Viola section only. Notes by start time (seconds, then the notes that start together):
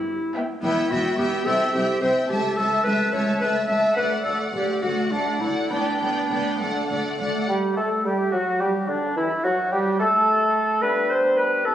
0.36 B3
0.63 B3
0.92 B3
1.19 B3
1.46 C4
1.75 C4
2.03 C4
2.29 A3
2.56 A3
2.85 A3
3.13 A3
3.40 A3
3.69 A3
3.98 A3
4.26 A3
4.54 A3
4.84 A3
5.12 A3
5.42 A3
5.72 B3
6.02 B3
6.31 B3
6.61 A3
6.92 A3
7.22 A3